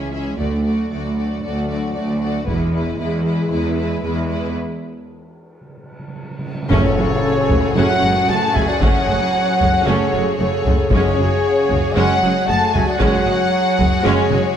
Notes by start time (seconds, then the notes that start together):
Already playing: C#2 E3 C#4 G#4 E5
0.13 C#4 G#4 E5
0.37 D2 F#3 A3 D4 F#4 D5
0.65 A3 F#4 D5
0.91 D2 A3 F#4 D5
1.16 A3 F#4 D5
1.43 D2 A3 F#4 D5
1.69 A3 F#4 D5
1.95 D2 A3 F#4 D5
2.20 A3 F#4 D5
2.46 E1 E2 G#3 E4 B4, taiko
2.73 G#3 E4 B4
2.99 E2 G#3 E4 B4
3.27 G#3 E4 B4
3.51 E2 G#3 E4 B4
3.77 G#3 E4 B4
4.03 E2 G#3 E4 B4
4.29 G#3 E4 B4
5.61 C#3
5.69 C#3
5.77 C#3
5.84 C#3
5.92 C#3
5.99 C#3
6.08 C#3
6.16 C#3
6.23 C#3
6.31 C#3
6.39 C#3
6.46 C#3
6.55 C#3
6.62 C#3
6.69 F#1 F#2 C#3 A3 C#4 F#4 G#4 A4 C#5, taiko, tam-tam, impact
6.96 F#1 F#2 G#3 A3
7.49 F#1 F#2 G#3 A3, taiko low
7.75 F#1 F#2 C#3 F#3 A3 C#4 C#5 F#5
8.01 F#1 F#2 G#3 A3
8.28 F#1 F#2 A3 F#5 A5
8.53 F#1 F#2 G#3 A3 E5 G#5, taiko low
8.67 F#3 D5 F#5
8.80 F#1 F#2 C#3 F#3 A3 C#4 C#5 F#5, taiko
9.08 F#1 F#2 G#3 A3
9.60 F#1 F#2 G#3 A3, taiko low
9.83 F#1 F#2 C#3 A3 C#4 A4 C#5
10.13 F#1 F#2 G#3 A3
10.38 F#1 F#2 C#3 A3 A4 C#5
10.65 F#1 F#2 G#3 A3, taiko low
10.89 F#1 F#2 C#3 G#3 C#4 F#4 G#4 C#5, taiko
11.18 F#1 F#2 F#3 G#3
11.69 F#1 F#2 F#3 G#3, taiko low
11.95 F#1 F#2 C#3 F#3 G#3 C#4 C#5 F#5
12.22 F#1 F#2 F#3 G#3
12.47 F#1 F#2 G#3 A3 F#5 A5
12.73 F#1 F#2 F#3 G#3 E5 G#5, taiko low
12.87 F#3 D5 F#5
12.99 F#1 F#2 C#3 F#3 G#3 C#4 C#5 F#5, taiko
13.26 F#1 F#2 F#3 G#3
13.78 F#1 F#2 F#3 G#3, taiko low
14.04 F#1 F#2 C#3 G#3 C#4 G#4 C#5
14.30 F#1 F#2 F#3 G#3, taiko mid